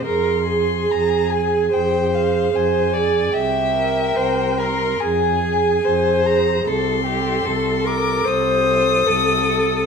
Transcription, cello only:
0.06 0.81 F2 soft
0.90 1.63 F2 soft
1.72 2.44 F2 soft
2.54 3.25 F2 soft
3.34 4.07 C2 soft
4.17 4.90 C2 soft
5.02 5.74 F2 soft
5.84 6.56 F2 soft
6.66 7.37 C2 soft
7.46 8.17 C2 medium
8.26 8.99 C2 medium
9.08 9.81 C2 medium

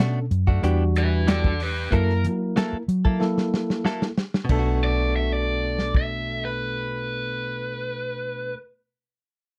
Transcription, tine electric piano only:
0.00 0.24 C#4 medium
0.00 0.24 D4 medium
0.00 0.25 A4 medium
0.62 1.52 G3 medium
0.62 1.53 D4 medium
0.62 1.53 F#4 loud
1.91 2.81 A#3 medium
1.91 2.82 E4 medium
1.91 2.82 A#4 medium
3.19 4.10 A#3 medium
3.19 4.10 E4 medium
3.19 4.10 A4 medium
4.46 8.51 B3 medium
4.46 8.53 D4 medium
4.52 8.54 A4 medium

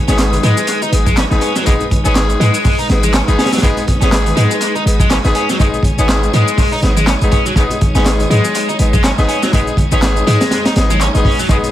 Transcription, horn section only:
0.08 0.41 G#3 loud
0.08 0.41 B3 medium
0.08 0.41 D#4 medium
0.08 0.41 G#4 loud
0.43 0.58 G#3 loud
0.43 0.58 B3 medium
0.43 0.58 D#4 medium
0.43 0.58 G#4 loud
0.92 1.07 G#3 medium
0.92 1.07 B3 medium
0.92 1.07 D#4 medium
0.92 1.07 G#4 medium
1.31 1.51 G#3 loud
1.31 1.51 B3 medium
1.31 1.51 D#4 medium
1.31 1.51 G#4 loud
1.66 1.87 G#3 loud
1.66 1.87 B3 medium
1.66 1.87 D#4 medium
1.66 1.87 G#4 loud
2.05 2.37 G#3 loud
2.05 2.37 B3 medium
2.05 2.38 D#4 medium
2.05 2.37 G#4 loud
2.40 2.55 G#3 loud
2.40 2.55 B3 medium
2.40 2.55 D#4 medium
2.40 2.55 G#4 loud
2.89 3.04 G#3 medium
2.89 3.04 B3 medium
2.89 3.04 D#4 medium
2.89 3.04 G#4 medium
3.28 3.48 G#3 medium
3.28 3.48 B3 medium
3.28 3.48 D#4 medium
3.28 3.48 G#4 loud
3.63 3.84 G#3 loud
3.63 3.84 B3 medium
3.63 3.84 D#4 medium
3.63 3.84 G#4 loud
4.01 4.34 G#3 loud
4.01 4.34 B3 medium
4.01 4.34 D#4 medium
4.01 4.34 G#4 loud
4.37 4.51 G#3 loud
4.37 4.51 B3 medium
4.37 4.51 D#4 medium
4.37 4.51 G#4 loud
4.86 5.00 G#3 medium
4.86 5.00 B3 medium
4.86 5.00 D#4 medium
4.86 5.00 G#4 medium
5.25 5.44 G#3 medium
5.25 5.44 B3 medium
5.25 5.44 D#4 medium
5.25 5.44 G#4 loud
5.60 5.81 G#3 loud
5.60 5.81 B3 medium
5.60 5.81 D#4 medium
5.60 5.81 G#4 loud
5.98 6.31 G#3 loud
5.98 6.31 B3 medium
5.98 6.31 D#4 medium
5.98 6.31 G#4 loud
6.33 6.48 G#3 loud
6.33 6.48 B3 medium
6.33 6.48 D#4 medium
6.33 6.48 G#4 loud
6.83 6.97 G#3 medium
6.83 6.97 B3 medium
6.83 6.97 D#4 medium
6.83 6.97 G#4 medium
7.22 7.41 G#3 medium
7.22 7.41 B3 medium
7.22 7.41 D#4 medium
7.22 7.41 G#4 loud
7.57 7.78 G#3 loud
7.57 7.78 B3 medium
7.57 7.78 D#4 loud
7.57 7.78 G#4 loud
7.95 8.28 G#3 loud
7.95 8.28 B3 medium
7.95 8.28 D#4 medium
7.95 8.28 G#4 loud
8.30 8.45 G#3 loud
8.30 8.45 B3 medium
8.30 8.45 D#4 medium
8.30 8.45 G#4 loud
8.79 8.94 G#3 medium
8.79 8.94 B3 medium
8.79 8.94 D#4 medium
8.79 8.94 G#4 medium
9.18 9.38 G#3 loud
9.18 9.38 B3 medium
9.18 9.38 D#4 medium
9.18 9.38 G#4 loud
9.53 9.74 G#3 loud
9.53 9.74 B3 medium
9.53 9.74 D#4 medium
9.53 9.74 G#4 loud
9.92 10.24 G#3 loud
9.92 10.24 B3 medium
9.92 10.24 D#4 medium
9.92 10.24 G#4 loud
10.27 10.41 G#3 loud
10.27 10.41 B3 medium
10.27 10.41 D#4 medium
10.27 10.41 G#4 loud
10.76 10.91 G#3 medium
10.76 10.91 B3 medium
10.76 10.90 D#4 medium
10.76 10.91 G#4 medium
11.15 11.35 G#3 loud
11.15 11.35 B3 medium
11.15 11.35 D#4 medium
11.15 11.35 G#4 loud
11.50 11.71 G#3 loud
11.50 11.71 B3 medium
11.50 11.71 D#4 medium
11.50 11.71 G#4 loud

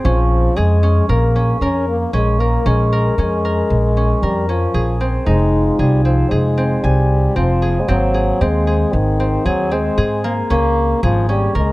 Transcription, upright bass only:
0.05 0.47 A#1 medium
0.57 0.99 F2 medium
1.09 1.51 A#1 medium
1.61 2.03 F2 medium
2.13 2.55 A#1 medium
2.66 3.07 A#1 medium
3.18 3.60 F2 medium
3.70 4.12 A#1 medium
4.22 4.64 F2 medium
4.74 5.16 A#1 medium
5.27 5.69 F1 medium
5.79 6.21 C2 medium
6.32 6.73 F1 medium
6.84 7.26 C2 medium
7.36 7.78 F1 medium
7.89 8.31 G#1 medium
8.41 8.83 D#2 medium
8.93 9.35 G#1 medium
9.46 9.88 D#2 medium
9.98 10.40 G#2 medium
10.51 10.92 C#2 medium
11.03 11.45 G#1 loud
11.55 11.72 C#2 medium

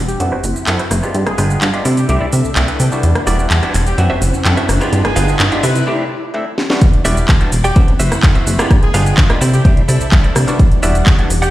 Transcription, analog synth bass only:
0.00 0.16 E1 medium
0.20 0.30 F#2 loud
0.32 0.42 F#1 soft
0.44 0.54 F#1 medium
0.56 0.65 F#2 soft
0.67 0.77 F#2 loud
0.91 1.01 F#1 loud
1.15 1.24 G2 loud
1.27 1.36 G1 soft
1.38 1.58 G1 loud
1.62 1.72 G2 medium
1.86 2.05 C3 medium
2.09 2.19 C2 loud
2.21 2.30 C3 soft
2.33 2.43 C3 medium
2.45 2.54 C2 soft
2.56 2.66 C2 medium
2.80 2.90 C3 loud
3.04 3.13 E2 loud
3.27 3.46 E1 loud
3.51 3.61 E2 medium
3.75 3.94 E1 loud
3.98 4.08 F#2 loud
4.10 4.19 F#1 soft
4.22 4.32 F#1 medium
4.45 4.55 F#2 loud
4.69 4.79 F#1 loud
4.93 5.02 G2 loud
5.05 5.14 G1 soft
5.16 5.35 G1 loud
5.40 5.50 G2 medium
5.64 5.83 C3 loud
6.82 6.91 E2 loud
7.05 7.24 E1 loud
7.29 7.39 E2 medium
7.53 7.72 E1 loud
7.76 7.86 F#2 loud
7.88 7.97 F#1 soft
8.00 8.09 F#1 loud
8.12 8.21 F#2 soft
8.23 8.33 F#2 loud
8.47 8.57 F#1 loud
8.71 8.80 G2 loud
8.83 8.92 G1 soft
8.94 9.13 G1 loud
9.18 9.28 G2 medium
9.41 9.61 C3 medium
9.65 9.75 C2 loud
9.77 9.86 C3 soft
9.89 9.98 C3 medium
10.01 10.10 C2 soft
10.12 10.22 C2 loud
10.36 10.46 C3 loud
10.59 10.69 E2 loud
10.83 11.02 E1 loud
11.07 11.17 E2 medium
11.30 11.50 E1 medium

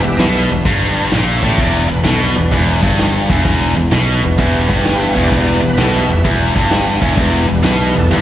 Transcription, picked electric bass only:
0.03 0.18 E1 medium
0.18 0.48 B1 medium
0.50 0.65 E1 medium
0.65 1.09 G1 medium
1.12 1.41 A#1 medium
1.42 1.57 A1 medium
1.58 1.87 E1 medium
1.89 2.04 E1 medium
2.05 2.34 B1 medium
2.36 2.51 E1 medium
2.51 2.81 E1 medium
2.82 3.26 G1 medium
3.30 3.44 E1 medium
3.45 3.74 E1 loud
3.76 3.90 E1 medium
3.90 4.20 B1 medium
4.22 4.37 E1 medium
4.38 4.67 E1 medium
4.69 5.13 G1 medium
5.16 5.31 E1 medium
5.32 5.61 E1 loud
5.62 5.77 E1 medium
5.77 6.07 B1 loud
6.08 6.23 E1 medium
6.24 6.53 E1 medium
6.56 6.99 G1 medium
7.02 7.17 E1 medium
7.17 7.46 E1 loud
7.48 7.63 E1 medium
7.65 7.93 B1 medium
7.96 8.10 E1 medium
8.10 8.21 G1 medium

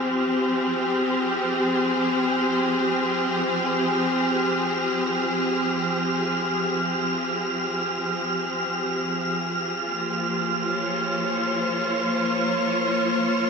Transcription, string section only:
0.00 13.50 F3 medium
0.00 9.40 C4 medium
0.00 11.69 G4 medium
0.00 12.17 G#4 medium
9.58 13.50 F4 medium
9.88 13.50 A#3 medium
10.63 13.50 C5 medium
10.69 13.50 C#5 medium

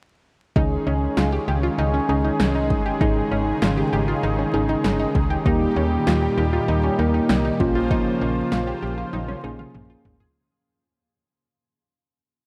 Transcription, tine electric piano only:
0.56 1.54 C#4 medium
0.56 1.54 D#4 medium
0.56 1.54 G#4 medium
2.09 2.82 C#4 medium
2.09 2.82 D#4 medium
2.09 2.82 G#4 medium
3.01 3.99 C#4 medium
3.01 3.99 D#4 medium
3.01 3.99 G#4 medium
4.54 5.27 C#4 medium
4.54 5.27 D#4 medium
4.54 5.27 G#4 medium
5.46 6.44 A#3 medium
5.46 6.44 D#4 medium
5.46 6.44 G4 medium
6.99 7.59 A#3 medium
6.99 7.60 D#4 medium
6.99 7.60 A#4 medium
7.60 8.58 A#3 medium
7.60 8.58 C#4 medium
7.60 8.58 F4 medium
9.44 10.17 A#3 medium
9.44 10.17 C#4 medium
9.44 10.17 G#4 medium

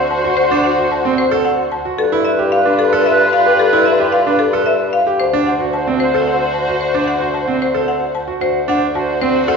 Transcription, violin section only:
0.00 1.81 F#4 medium
0.00 1.81 C5 medium
1.98 5.02 F4 medium
1.98 5.02 B4 medium
5.20 8.24 F#4 medium
5.20 8.24 C5 medium
8.41 9.57 F#4 medium
8.41 9.57 C5 medium

